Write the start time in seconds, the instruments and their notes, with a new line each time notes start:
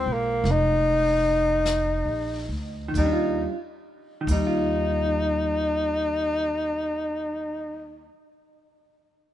Already playing: hollow-body jazz guitar F3 G#3 D#4, tenor saxophone C4
0.06 upright bass B1
0.13 tenor saxophone A#3
0.44 upright bass F1, brush sweep, snare
0.51 tenor saxophone D#4
1.65 brush sweep, snare, hi-hat pedal
2.05 upright bass A#1
2.49 upright bass D2
2.88 hollow-body jazz guitar D#3
2.94 upright bass D#2, hollow-body jazz guitar G3, tenor saxophone D#4, kick, ride
3.06 hollow-body jazz guitar D4
3.13 hollow-body jazz guitar F4
4.21 hollow-body jazz guitar D#3
4.27 upright bass D#2, hollow-body jazz guitar G3, kick, ride
4.32 tenor saxophone D#4
4.47 hollow-body jazz guitar F4